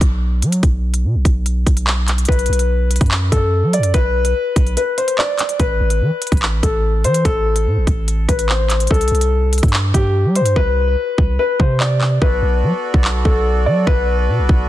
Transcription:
0.01 0.44 B1 loud
0.01 kick loud
0.01 closed hi-hat medium
0.42 0.62 F#3 medium
0.42 closed hi-hat medium
0.52 closed hi-hat medium
0.63 1.06 B1 loud
0.63 kick loud
0.63 closed hi-hat medium
0.94 closed hi-hat medium
1.04 1.16 B2 loud
1.15 1.25 B1 loud
1.25 1.65 B1 loud
1.25 kick loud
1.25 closed hi-hat medium
1.46 closed hi-hat medium
1.67 2.26 B1 loud
1.67 kick loud
1.67 closed hi-hat medium
1.77 closed hi-hat medium
1.87 clap loud
2.08 clap medium
2.08 closed hi-hat medium
2.18 closed hi-hat medium
2.25 2.48 B1 loud
2.25 3.28 B4 medium
2.25 kick loud
2.25 closed hi-hat medium
2.32 closed hi-hat medium
2.39 closed hi-hat medium
2.46 2.99 B1 loud
2.46 closed hi-hat medium
2.53 closed hi-hat medium
2.59 closed hi-hat medium
2.91 closed hi-hat medium
2.96 closed hi-hat medium
3.01 3.31 F#2 loud
3.01 kick loud
3.01 closed hi-hat medium
3.06 closed hi-hat soft
3.11 clap loud
3.32 3.65 F#2 loud
3.32 3.71 A4 medium
3.32 kick medium
3.32 closed hi-hat medium
3.63 3.80 F#3 loud
3.73 3.92 D5 medium
3.73 closed hi-hat medium
3.79 3.93 F#2 medium
3.83 closed hi-hat medium
3.94 4.34 B1 loud
3.94 4.73 B4 loud
3.94 kick loud
3.94 closed hi-hat medium
4.25 closed hi-hat medium
4.56 4.77 B1 loud
4.56 kick loud
4.56 closed hi-hat medium
4.67 closed hi-hat soft
4.77 4.96 B4 medium
4.77 closed hi-hat medium
4.98 5.17 C5 medium
4.98 closed hi-hat medium
5.08 closed hi-hat medium
5.18 5.57 D5 medium
5.18 clap loud
5.39 clap medium
5.39 closed hi-hat medium
5.49 closed hi-hat medium
5.60 5.79 A1 loud
5.60 6.59 B4 loud
5.60 kick loud
5.60 closed hi-hat medium
5.80 6.03 A1 loud
5.90 closed hi-hat medium
6.01 6.11 E3 loud
6.22 closed hi-hat medium
6.27 closed hi-hat medium
6.32 6.62 A1 loud
6.32 kick loud
6.32 closed hi-hat medium
6.37 closed hi-hat soft
6.42 clap loud
6.63 7.06 A1 loud
6.63 7.02 A4 medium
6.63 kick medium
6.63 closed hi-hat medium
7.04 7.24 E3 loud
7.04 7.23 C5 medium
7.04 closed hi-hat medium
7.14 closed hi-hat medium
7.25 7.68 A1 loud
7.25 8.24 A4 loud
7.25 kick loud
7.25 closed hi-hat medium
7.56 closed hi-hat medium
7.66 7.78 A2 loud
7.77 7.87 A1 loud
7.87 8.27 A1 loud
7.87 kick loud
7.87 closed hi-hat medium
8.08 closed hi-hat medium
8.29 8.88 A1 loud
8.29 8.48 B4 medium
8.29 kick medium
8.29 closed hi-hat medium
8.39 closed hi-hat medium
8.49 8.88 C5 medium
8.49 clap loud
8.70 clap medium
8.70 closed hi-hat medium
8.80 closed hi-hat medium
8.87 9.10 C2 loud
8.87 9.90 A4 medium
8.87 kick loud
8.87 closed hi-hat medium
8.94 closed hi-hat medium
9.01 closed hi-hat medium
9.08 9.61 C2 loud
9.08 closed hi-hat medium
9.15 closed hi-hat medium
9.21 closed hi-hat medium
9.53 closed hi-hat medium
9.58 closed hi-hat medium
9.63 9.93 G2 loud
9.63 kick loud
9.63 closed hi-hat medium
9.68 closed hi-hat soft
9.73 clap loud
9.94 10.27 G2 loud
9.94 10.33 G4 medium
9.94 kick medium
9.94 closed hi-hat medium
10.25 10.42 G3 loud
10.36 10.55 C5 medium
10.36 closed hi-hat medium
10.41 10.55 G2 loud
10.46 closed hi-hat medium
10.56 10.96 C2 loud
10.56 11.35 B4 loud
10.56 kick loud
11.18 11.38 C2 loud
11.18 kick loud
11.39 11.58 B4 medium
11.60 12.19 C3 loud
11.60 11.79 C5 medium
11.60 kick medium
11.80 12.19 D5 medium
11.80 clap loud
12.01 clap medium
12.22 12.41 B1 loud
12.22 14.69 B3 medium
12.22 14.69 F#4 medium
12.22 14.69 A4 medium
12.22 13.21 B4 medium
12.22 14.69 D5 loud
12.22 kick loud
12.42 12.64 B1 loud
12.63 12.73 F#3 loud
12.94 13.24 B1 loud
12.94 kick loud
13.04 clap loud
13.25 13.68 B1 loud
13.25 13.64 A4 medium
13.25 kick medium
13.66 13.86 F#3 loud
13.66 13.85 D5 medium
13.87 14.30 B1 loud
13.87 14.69 B4 loud
13.87 kick loud
14.29 14.40 B2 medium
14.39 14.49 B1 loud
14.49 14.69 B1 loud
14.49 kick loud

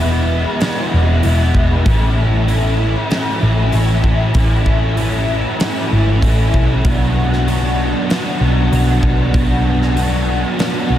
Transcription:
0.00 0.44 E1 loud
0.00 0.30 E2 medium
0.00 0.30 B2 loud
0.00 0.62 E3 medium
0.00 0.62 G#3 medium
0.00 0.62 B3 medium
0.00 0.63 E4 medium
0.60 1.23 E2 medium
0.60 1.24 B2 medium
0.60 0.95 E3 loud
0.60 0.93 G#3 loud
0.60 0.93 B3 medium
0.60 0.91 E4 loud
0.60 snare loud
0.60 open hi-hat medium
0.92 1.20 E1 medium
0.92 1.23 E3 medium
0.92 1.24 G#3 medium
0.92 1.26 B3 medium
0.92 1.27 E4 medium
1.23 1.51 E1 loud
1.23 1.86 E3 medium
1.23 1.85 G#3 medium
1.23 1.88 B3 medium
1.23 open hi-hat medium
1.27 1.89 E4 medium
1.54 1.82 E1 medium
1.54 kick medium
1.86 2.94 A1 medium
1.86 3.10 A2 loud
1.86 2.47 E3 loud
1.86 2.48 A3 medium
1.86 2.50 C#4 loud
1.86 2.50 E4 loud
1.86 kick loud
1.86 open hi-hat medium
2.48 3.11 E3 medium
2.48 3.12 A3 medium
2.48 3.12 C#4 medium
2.48 3.13 E4 medium
2.48 open hi-hat medium
3.10 3.73 A2 loud
3.10 3.71 E3 loud
3.10 3.44 A3 loud
3.10 3.42 C#4 loud
3.10 3.40 E4 loud
3.10 snare loud
3.10 open hi-hat medium
3.41 3.69 A1 medium
3.41 3.74 C#4 medium
3.41 3.75 E4 medium
3.45 3.73 A3 medium
3.72 4.00 A1 medium
3.72 4.35 E3 medium
3.72 4.37 A3 medium
3.72 4.37 C#4 medium
3.72 4.37 E4 medium
3.72 open hi-hat medium
4.03 4.31 A1 medium
4.03 kick medium
4.34 5.43 A1 medium
4.34 5.29 A2 medium
4.34 4.96 E3 loud
4.34 4.97 A3 medium
4.34 4.98 C#4 loud
4.34 kick loud
4.34 open hi-hat medium
4.38 4.98 E4 medium
4.66 kick medium
4.97 5.59 E3 medium
4.97 5.61 A3 medium
4.97 5.61 C#4 medium
4.97 5.62 E4 medium
4.97 open hi-hat medium
5.60 6.22 A2 medium
5.60 6.21 E3 medium
5.60 5.94 A3 medium
5.60 5.92 C#4 loud
5.60 5.90 E4 loud
5.60 snare loud
5.60 open hi-hat medium
5.91 6.20 G#1 medium
5.91 6.23 A3 medium
5.91 6.23 C#4 medium
5.91 6.24 E4 medium
6.22 6.51 A1 medium
6.22 6.83 E3 medium
6.22 6.86 A3 medium
6.22 6.84 C#4 medium
6.22 6.84 E4 medium
6.22 kick medium
6.22 open hi-hat medium
6.54 6.82 B1 medium
6.54 kick medium
6.85 7.93 B1 medium
6.85 8.08 B2 medium
6.85 7.46 F#3 loud
6.85 7.47 B3 medium
6.85 7.48 D4 medium
6.85 7.49 F#4 loud
6.85 kick loud
6.85 open hi-hat medium
7.33 snare soft
7.47 8.09 F#3 medium
7.47 8.10 B3 medium
7.47 8.10 D4 medium
7.47 8.12 F#4 medium
7.47 open hi-hat medium
8.09 8.71 B2 medium
8.09 8.71 F#3 loud
8.09 8.43 B3 loud
8.09 8.41 D4 loud
8.09 8.40 F#4 loud
8.09 snare loud
8.09 open hi-hat medium
8.40 8.68 B1 medium
8.40 8.72 B3 medium
8.40 8.72 D4 medium
8.40 8.74 F#4 medium
8.71 8.99 B1 medium
8.71 9.34 F#3 medium
8.71 9.35 B3 medium
8.71 9.35 D4 medium
8.71 9.37 F#4 medium
8.71 open hi-hat medium
9.03 9.30 B1 medium
9.03 kick medium
9.34 10.42 B1 loud
9.34 10.28 B2 medium
9.34 9.95 F#3 medium
9.34 9.97 B3 loud
9.34 9.97 D4 loud
9.34 9.98 F#4 loud
9.34 kick loud
9.34 open hi-hat medium
9.82 snare soft
9.96 10.58 F#3 medium
9.96 10.60 B3 medium
9.96 10.59 D4 medium
9.96 10.61 F#4 medium
9.96 open hi-hat medium
10.58 10.98 B2 loud
10.58 10.98 F#3 medium
10.58 10.92 B3 loud
10.58 10.89 D4 medium
10.58 10.88 F#4 loud
10.58 snare loud
10.58 open hi-hat medium
10.89 10.98 B1 medium
10.89 10.98 B3 medium
10.89 10.98 D4 medium
10.89 10.98 F#4 medium

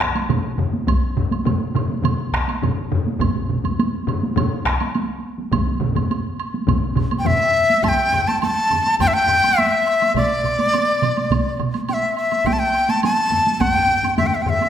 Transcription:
0.00 taiko rim medium
0.00 taiko medium
0.00 high woodblock soft
0.15 taiko high medium
0.15 high woodblock soft
0.29 taiko low-mid medium
0.29 taiko mid medium
0.29 taiko high medium
0.29 high woodblock soft
0.58 taiko low-mid medium
0.58 taiko mid loud
0.73 taiko high medium
0.87 taiko medium
0.87 taiko high medium
0.87 high woodblock medium
1.17 taiko low-mid medium
1.17 taiko mid medium
1.31 taiko high medium
1.31 high woodblock soft
1.45 taiko low-mid loud
1.45 taiko mid medium
1.45 taiko high medium
1.45 high woodblock soft
1.75 taiko low-mid medium
1.75 taiko mid loud
1.75 high woodblock soft
1.89 taiko high medium
2.04 taiko low-mid loud
2.04 taiko mid loud
2.04 taiko high medium
2.04 high woodblock medium
2.33 taiko rim medium
2.33 taiko medium
2.33 high woodblock soft
2.48 taiko high soft
2.48 high woodblock medium
2.63 taiko low-mid loud
2.63 taiko mid medium
2.63 taiko high medium
2.63 high woodblock soft
2.91 taiko low-mid loud
2.91 taiko mid medium
3.06 taiko high soft
3.19 taiko loud
3.19 taiko low-mid medium
3.19 taiko mid medium
3.19 taiko high medium
3.19 high woodblock medium
3.35 taiko low-mid medium
3.35 taiko mid medium
3.50 taiko low-mid medium
3.50 taiko mid medium
3.64 taiko low-mid medium
3.64 taiko mid medium
3.64 taiko high medium
3.64 high woodblock soft
3.79 taiko high medium
3.79 high woodblock soft
4.07 taiko low-mid medium
4.07 taiko mid medium
4.07 high woodblock soft
4.23 taiko high medium
4.36 taiko low-mid loud
4.36 taiko mid medium
4.36 taiko high medium
4.36 high woodblock medium
4.64 taiko rim medium
4.64 taiko medium
4.64 high woodblock soft
4.80 taiko high soft
4.80 high woodblock soft
4.95 taiko high medium
4.95 high woodblock soft
5.38 taiko high soft
5.52 taiko loud
5.52 taiko low-mid medium
5.52 taiko mid medium
5.52 taiko high medium
5.52 high woodblock medium
5.68 taiko high medium
5.80 taiko low-mid loud
5.80 taiko mid medium
5.95 taiko low-mid medium
5.95 taiko mid medium
5.95 taiko high medium
5.95 high woodblock medium
6.11 taiko high medium
6.11 high woodblock soft
6.40 high woodblock medium
6.54 taiko high soft
6.67 taiko medium
6.67 taiko low-mid medium
6.67 taiko mid loud
6.67 taiko high medium
6.67 high woodblock soft
6.95 taiko medium
6.95 taiko low-mid medium
6.95 taiko mid loud
6.95 high woodblock soft
7.11 taiko high medium
7.11 high woodblock medium
7.19 7.28 G5 medium
7.25 7.85 E5 medium
7.25 taiko low-mid loud
7.25 taiko mid medium
7.25 taiko high medium
7.25 high woodblock soft
7.70 taiko high soft
7.83 7.89 A5 medium
7.83 taiko medium
7.83 taiko low-mid medium
7.83 taiko high medium
7.83 high woodblock medium
7.88 8.29 G5 medium
8.13 taiko low-mid medium
8.13 high woodblock soft
8.28 8.41 A5 medium
8.28 taiko high soft
8.28 high woodblock soft
8.42 8.96 A5 medium
8.42 taiko high medium
8.42 high woodblock medium
8.70 taiko low-mid medium
8.70 taiko high soft
8.70 high woodblock soft
8.86 taiko high soft
8.86 high woodblock soft
8.99 9.09 G5 medium
8.99 taiko medium
8.99 taiko low-mid medium
8.99 taiko high medium
8.99 high woodblock medium
9.07 9.15 E5 medium
9.14 9.60 G5 medium
9.28 taiko low-mid medium
9.28 high woodblock soft
9.44 taiko high soft
9.44 high woodblock soft
9.58 10.16 E5 medium
9.58 taiko high soft
9.58 high woodblock medium
9.87 high woodblock soft
10.01 taiko high soft
10.01 high woodblock soft
10.14 11.59 D5 medium
10.14 taiko medium
10.14 taiko mid medium
10.14 taiko high medium
10.14 high woodblock soft
10.44 taiko mid medium
10.44 high woodblock soft
10.59 taiko high medium
10.59 high woodblock soft
10.73 taiko high medium
10.73 high woodblock medium
11.02 taiko mid medium
11.02 taiko high soft
11.02 high woodblock soft
11.17 taiko high soft
11.17 high woodblock soft
11.30 taiko medium
11.30 taiko mid medium
11.30 taiko high medium
11.30 high woodblock medium
11.60 taiko mid medium
11.60 high woodblock soft
11.74 taiko high soft
11.74 high woodblock soft
11.89 11.94 G5 medium
11.89 taiko high medium
11.89 high woodblock medium
11.93 12.15 E5 medium
12.17 12.48 E5 medium
12.17 high woodblock soft
12.31 taiko high soft
12.31 high woodblock soft
12.45 12.54 G5 medium
12.45 taiko medium
12.45 taiko high medium
12.45 high woodblock soft
12.53 12.61 A5 medium
12.59 12.91 G5 medium
12.74 high woodblock soft
12.89 13.04 A5 medium
12.89 taiko high medium
12.89 high woodblock soft
13.03 13.62 A5 medium
13.03 taiko high medium
13.03 high woodblock medium
13.31 taiko low-mid medium
13.31 taiko high soft
13.47 taiko high medium
13.60 14.17 G5 medium
13.60 taiko medium
13.60 taiko low-mid medium
13.60 taiko high medium
13.60 high woodblock soft
13.74 taiko low-mid medium
13.89 taiko low-mid medium
14.03 taiko low-mid medium
14.03 taiko high soft
14.03 high woodblock soft
14.18 14.28 E5 medium
14.18 taiko low-mid medium
14.18 taiko high medium
14.18 high woodblock soft
14.27 14.36 G5 medium
14.35 14.44 E5 medium
14.42 14.51 G5 medium
14.46 14.69 E5 medium
14.46 taiko low-mid medium
14.46 high woodblock soft
14.61 taiko high soft
14.61 high woodblock soft

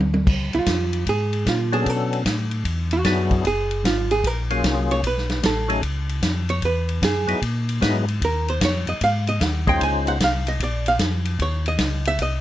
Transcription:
0.00 0.26 D2 medium
0.00 high tom medium
0.14 high tom medium
0.27 0.51 C#2 medium
0.27 kick medium
0.27 crash medium
0.53 0.61 C#2 soft
0.53 1.04 F4 medium
0.53 ride soft
0.66 1.05 F2 medium
0.66 kick soft
0.66 snare medium
0.66 hi-hat pedal medium
0.66 ride medium
0.93 ride soft
1.06 1.45 G#2 medium
1.06 1.45 G#4 medium
1.06 kick soft
1.06 ride medium
1.33 ride soft
1.46 1.85 A#2 medium
1.46 1.73 F4 medium
1.46 kick soft
1.46 snare medium
1.46 hi-hat pedal medium
1.46 ride medium
1.72 2.23 F#3 medium
1.72 2.23 B3 medium
1.72 2.23 C#4 medium
1.72 2.23 D4 medium
1.72 1.89 G#4 medium
1.72 2.24 A4 medium
1.72 ride soft
1.86 2.24 B2 medium
1.86 2.13 A4 medium
1.86 kick soft
1.86 ride medium
2.13 ride soft
2.25 2.64 A2 medium
2.25 kick soft
2.25 snare medium
2.25 hi-hat pedal medium
2.25 ride medium
2.51 ride soft
2.65 3.04 E2 medium
2.65 kick soft
2.65 ride medium
2.91 3.42 F#4 medium
2.91 ride soft
3.04 3.43 F#2 medium
3.04 3.45 F#3 medium
3.04 3.45 B3 medium
3.04 3.45 D4 medium
3.04 3.45 E4 medium
3.04 3.45 G#4 medium
3.04 kick soft
3.04 snare medium
3.04 hi-hat pedal medium
3.04 ride medium
3.31 kick medium
3.31 ride soft
3.44 3.83 F#1 medium
3.44 3.83 G#4 medium
3.44 kick soft
3.44 ride medium
3.71 ride soft
3.84 4.23 G#1 medium
3.84 4.11 F4 medium
3.84 kick soft
3.84 snare medium
3.84 hi-hat pedal medium
3.84 ride medium
4.11 4.27 G#4 medium
4.11 ride soft
4.24 4.63 A#1 medium
4.24 4.42 A#4 medium
4.24 kick soft
4.24 ride medium
4.50 5.01 F#3 medium
4.50 5.01 A#3 medium
4.50 5.01 C#4 medium
4.50 5.01 F4 medium
4.50 5.02 G#4 medium
4.50 ride medium
4.64 5.02 C2 medium
4.64 kick soft
4.64 snare medium
4.64 hi-hat pedal medium
4.64 ride medium
4.91 5.04 C#5 medium
4.91 ride soft
5.03 5.42 B1 medium
5.03 kick soft
5.03 ride medium
5.07 5.42 B4 medium
5.18 snare soft
5.29 snare soft
5.29 ride soft
5.42 5.82 A1 medium
5.42 5.82 A4 medium
5.42 kick soft
5.42 snare medium
5.42 hi-hat pedal medium
5.42 ride medium
5.68 5.81 F#3 medium
5.68 5.82 A3 medium
5.68 5.82 C#4 medium
5.68 5.82 D#4 medium
5.68 5.82 G#4 medium
5.68 ride soft
5.82 6.21 C#2 medium
5.82 kick soft
5.82 ride medium
6.09 ride soft
6.22 6.61 F2 medium
6.22 kick soft
6.22 snare medium
6.22 hi-hat pedal medium
6.22 ride medium
6.49 6.63 C#5 medium
6.49 ride soft
6.62 7.01 E2 medium
6.62 7.01 B4 medium
6.62 kick soft
6.62 ride medium
6.89 ride soft
7.02 7.26 F#2 medium
7.02 7.41 G#4 medium
7.02 kick soft
7.02 snare medium
7.02 hi-hat pedal medium
7.02 ride medium
7.27 7.35 F#2 soft
7.27 7.40 F#3 medium
7.27 7.40 B3 medium
7.27 7.41 D#4 medium
7.27 7.41 E4 medium
7.27 7.41 G#4 medium
7.27 ride soft
7.42 7.81 A#2 medium
7.42 kick soft
7.42 ride medium
7.69 ride medium
7.81 8.20 G#2 medium
7.81 8.05 F#3 medium
7.81 8.05 B3 medium
7.81 8.06 D#4 medium
7.81 8.06 E4 medium
7.81 8.06 G#4 medium
7.81 kick soft
7.81 snare medium
7.81 hi-hat pedal medium
7.81 ride medium
8.08 ride soft
8.21 8.60 D#2 medium
8.21 8.49 A#4 medium
8.21 kick soft
8.21 ride medium
8.48 8.62 C5 medium
8.48 ride soft
8.61 8.86 F2 medium
8.61 8.88 C#5 medium
8.61 kick soft
8.61 snare medium
8.61 hi-hat pedal medium
8.61 ride medium
8.87 8.94 F2 soft
8.87 9.01 D#5 medium
8.87 ride soft
9.01 9.40 G#2 medium
9.01 9.28 F5 loud
9.01 kick soft
9.01 ride medium
9.27 9.43 D#5 medium
9.27 ride soft
9.41 9.79 D#2 medium
9.41 9.68 F#5 medium
9.41 kick soft
9.41 snare medium
9.41 hi-hat pedal soft
9.41 ride medium
9.67 10.18 G#3 medium
9.67 10.18 C#4 medium
9.67 10.18 D#4 medium
9.67 10.18 F4 medium
9.67 10.19 C5 medium
9.67 9.81 G5 loud
9.67 kick medium
9.67 ride soft
9.81 10.19 C#2 medium
9.81 10.07 G#5 loud
9.81 kick soft
9.81 ride medium
10.07 10.21 F#5 loud
10.07 ride soft
10.20 10.59 C2 medium
10.20 10.48 F5 medium
10.20 kick soft
10.20 snare medium
10.20 hi-hat pedal medium
10.20 ride medium
10.47 10.61 D#5 medium
10.47 ride medium
10.60 10.98 A#1 medium
10.60 10.87 D5 medium
10.60 kick soft
10.60 ride medium
10.86 10.96 F5 loud
10.86 ride medium
10.99 11.38 F2 medium
10.99 kick soft
10.99 snare medium
10.99 hi-hat pedal medium
10.99 ride medium
11.25 ride soft
11.39 11.78 D#2 medium
11.39 11.66 C#5 medium
11.39 kick soft
11.39 ride medium
11.66 12.04 D#5 medium
11.66 ride soft
11.78 12.18 C#2 medium
11.78 kick soft
11.78 snare medium
11.78 hi-hat pedal medium
11.78 ride medium
12.05 12.20 E5 loud
12.05 ride soft
12.18 12.41 C2 medium
12.18 12.41 D#5 medium
12.18 kick soft
12.18 ride medium

